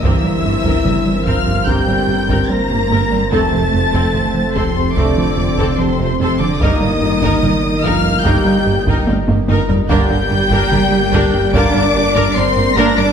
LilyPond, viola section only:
\new Staff \with { instrumentName = "Viola section" } { \time 4/4 \key g \minor \tempo 4 = 73 <c' bes'>16 <c' bes'>16 <bes g'>16 <c' bes'>16 <c' bes'>16 r16 <c' bes'>16 r16 <c' bes'>16 <c' bes'>16 <bes g'>16 <c' bes'>16 <c' bes'>16 <bes g'>16 <c' bes'>16 <c' bes'>16 | <c' a'>16 <c' a'>16 <a f'>16 <c' a'>16 <c' a'>16 r16 <c' a'>16 r16 <c' a'>16 <c' a'>16 <a f'>16 <c' a'>16 <c' a'>16 <a f'>16 <c' a'>16 <c' a'>16 | <ees' bes'>16 <ees' bes'>16 <bes g'>16 <ees' bes'>16 <ees' bes'>16 r16 <ees' bes'>16 r16 <ees' bes'>16 <ees' bes'>16 <bes g'>16 <ees' bes'>16 <ees' bes'>16 <bes g'>16 <ees' bes'>16 <ees' bes'>16 | <d' bes'>16 <d' bes'>16 <bes g'>16 <d' bes'>16 <d' bes'>16 r16 <d' bes'>16 r16 <d' bes'>16 <d' bes'>16 <bes g'>16 <d' bes'>16 <d' bes'>16 <bes g'>16 <d' bes'>16 <d' bes'>16 | }